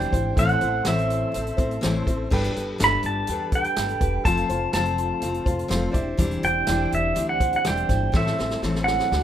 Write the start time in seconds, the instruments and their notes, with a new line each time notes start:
Already playing: steel-string acoustic guitar E3 G3 D4 E4 C5, tonewheel organ E3 C4 D4 G4, grand piano E4 C5 D5, pedal steel guitar G5
0.01 closed hi-hat
0.12 upright bass G#1, steel-string acoustic guitar D4 E4 C5, kick, closed hi-hat
0.35 upright bass A1, steel-string acoustic guitar A2 E3 A3 E4, tonewheel organ A3 A4 C5 E5, grand piano A4 C5 E5, pedal steel guitar F#5, kick, closed hi-hat
0.39 steel-string acoustic guitar C4 C5
0.49 closed hi-hat
0.61 upright bass A1, steel-string acoustic guitar A3 C4 E4 C5, closed hi-hat
0.85 upright bass A1, steel-string acoustic guitar A2 E3 A3 C4 E4 C5, grand piano A4 C5 E5, pedal steel guitar E5, snare, closed hi-hat
0.99 closed hi-hat
1.10 closed hi-hat
1.32 upright bass A1, steel-string acoustic guitar A3 C4 E4 C5, closed hi-hat
1.36 grand piano A4 C5 E5
1.47 closed hi-hat
1.57 upright bass A1, steel-string acoustic guitar A3 C4 E4 C5, kick, closed hi-hat
1.71 closed hi-hat
1.81 upright bass A1, steel-string acoustic guitar A2 E3 A3 C4 E4 C5, grand piano A4 C5, snare, closed hi-hat
1.86 grand piano E5
2.07 upright bass A1, steel-string acoustic guitar A3 C4 E4 C5, kick, closed hi-hat
2.30 upright bass G1, steel-string acoustic guitar G3 D4 A4 B4, tonewheel organ G3 G4 B4, grand piano A4 B4 G5, kick, crash
2.44 closed hi-hat
2.54 upright bass G1, steel-string acoustic guitar D4 A4 B4, closed hi-hat
2.78 upright bass G1, steel-string acoustic guitar G3 D4 A4 B4, grand piano A4 B4 E5, snare, closed hi-hat
2.84 pedal steel guitar B5
3.03 upright bass G1, pedal steel guitar A5, closed hi-hat
3.27 upright bass E2, steel-string acoustic guitar G3 D4, grand piano A4 B4 G5, closed hi-hat
3.31 steel-string acoustic guitar A4 B4
3.52 steel-string acoustic guitar A4 B4, pedal steel guitar G5, kick, closed hi-hat
3.57 steel-string acoustic guitar D4
3.64 closed hi-hat
3.75 upright bass G1, steel-string acoustic guitar G3 D4 A4, grand piano A4 B4 G5, snare, closed hi-hat
3.80 steel-string acoustic guitar B4
3.89 closed hi-hat
4.00 upright bass E1, steel-string acoustic guitar A4 B4, kick, closed hi-hat
4.05 steel-string acoustic guitar D4
4.24 upright bass F1, steel-string acoustic guitar F3 A3 C4 F4 C5, tonewheel organ F3 F4 C5, grand piano A4 C5 F5, pedal steel guitar A5, kick, closed hi-hat
4.37 closed hi-hat
4.49 upright bass F1, steel-string acoustic guitar C4 F4 C5, closed hi-hat
4.71 upright bass F1, steel-string acoustic guitar F3 A3 C4, grand piano A4 C5 F5, pedal steel guitar A5, snare, closed hi-hat
4.76 steel-string acoustic guitar F4 C5
4.85 closed hi-hat
4.98 closed hi-hat
5.20 upright bass F1, steel-string acoustic guitar A3 C4 F4, grand piano A4 C5 F5, closed hi-hat
5.25 steel-string acoustic guitar C5
5.34 closed hi-hat
5.46 upright bass F1, steel-string acoustic guitar C4 F4 C5, kick, closed hi-hat
5.59 closed hi-hat
5.68 upright bass F1, steel-string acoustic guitar F3 A3 C4 F4 C5, grand piano A4 C5 F5 C6, snare, closed hi-hat
5.92 upright bass E1, tonewheel organ E3 C4 D4 G4, steel-string acoustic guitar D4 E4 C5, grand piano C5 D5 E5, kick, closed hi-hat
6.17 upright bass E1, steel-string acoustic guitar E3 G3 D4 E4 C5, kick, closed hi-hat
6.31 closed hi-hat
6.43 upright bass E1, steel-string acoustic guitar D4 E4 C5, pedal steel guitar G5, closed hi-hat
6.67 upright bass E1, steel-string acoustic guitar E3 G3 D4 E4 C5, grand piano C5 D5 G5, snare, closed hi-hat
6.92 upright bass E1, pedal steel guitar E5, closed hi-hat
7.15 upright bass D2, steel-string acoustic guitar G3 D4 E4 C5, grand piano C5 D5 E5, closed hi-hat
7.29 pedal steel guitar F#5
7.40 steel-string acoustic guitar D4 E4 C5, kick, closed hi-hat
7.53 pedal steel guitar F#5, closed hi-hat
7.64 upright bass E1, steel-string acoustic guitar E3 G3 D4 E4 C5, grand piano C5 D5 E5, pedal steel guitar G5, snare, closed hi-hat
7.77 closed hi-hat
7.89 upright bass G1, steel-string acoustic guitar D4 E4 C5, kick, snare, closed hi-hat
8.12 upright bass A1, steel-string acoustic guitar A2 E3 A3 C4 E4 A4, tonewheel organ A3 A4 E5, grand piano A4 C5 E5, kick, snare
8.16 tonewheel organ C5, pedal steel guitar E5
8.27 snare
8.38 upright bass A1, steel-string acoustic guitar A3 C4 E4 A4, snare
8.50 snare
8.61 upright bass A1, steel-string acoustic guitar A2 E3 A3 C4 E4 A4, grand piano A4 C5 E5, snare
8.75 snare
8.84 pedal steel guitar F#5, snare
9.00 snare
9.10 upright bass D2, steel-string acoustic guitar A3 D4, tonewheel organ D4 F#4, grand piano A4 D5 F#5, snare
9.14 steel-string acoustic guitar F#4 A4